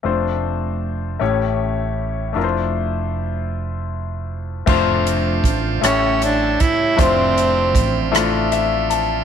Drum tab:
CC |------|------|x-----|------|
HH |------|------|-xxxxx|xxxxxx|
SD |------|------|---r--|---r--|
BD |------|------|o-o--o|o-o---|